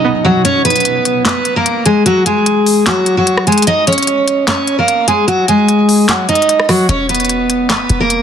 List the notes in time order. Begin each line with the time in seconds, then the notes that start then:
Already playing: B2 F#3 C#4 D#4 D#5
0.05 B3
0.25 F#3 F#4
0.45 C#4 C#5, closed hi-hat
0.65 B3 B4, closed hi-hat
0.70 closed hi-hat
0.76 closed hi-hat
0.80 closed hi-hat
0.85 closed hi-hat
1.05 closed hi-hat
1.25 B3 B4, snare, clap, closed hi-hat
1.45 closed hi-hat
1.56 A#3 A#4
1.66 closed hi-hat
1.86 G#3 G#4, closed hi-hat
2.06 F#3 F#4, closed hi-hat
2.26 G#3 G#4, closed hi-hat
2.46 closed hi-hat
2.66 open hi-hat
2.86 F#3 F#4, snare, clap, closed hi-hat
3.06 closed hi-hat
3.17 F#3 F#4
3.27 closed hi-hat
3.37 cross-stick
3.47 G#3 G#4, closed hi-hat
3.52 closed hi-hat
3.58 closed hi-hat
3.62 closed hi-hat
3.67 D#4 D#5, closed hi-hat
3.87 C#4 C#5, closed hi-hat
3.93 closed hi-hat
3.98 closed hi-hat
4.03 closed hi-hat
4.07 closed hi-hat
4.28 closed hi-hat
4.48 C#4 C#5, snare, clap, closed hi-hat
4.67 closed hi-hat
4.79 A#3 A#4
4.88 closed hi-hat
5.08 G#3 G#4, closed hi-hat
5.28 F#3 F#4, closed hi-hat
5.48 G#3 G#4, closed hi-hat
5.69 closed hi-hat
5.89 open hi-hat
6.08 F#3 F#4, snare, clap, closed hi-hat
6.29 D#4 D#5, closed hi-hat
6.35 closed hi-hat
6.42 closed hi-hat
6.49 closed hi-hat
6.60 cross-stick
6.69 F#3 F#4, cross-stick, open hi-hat
6.89 E1 C#4 C#5, closed hi-hat
7.09 B3 B4, closed hi-hat
7.15 closed hi-hat
7.20 closed hi-hat
7.25 closed hi-hat
7.29 closed hi-hat
7.50 closed hi-hat
7.70 B3 B4, snare, clap, closed hi-hat
7.89 E1, closed hi-hat
8.00 A#3 A#4
8.10 closed hi-hat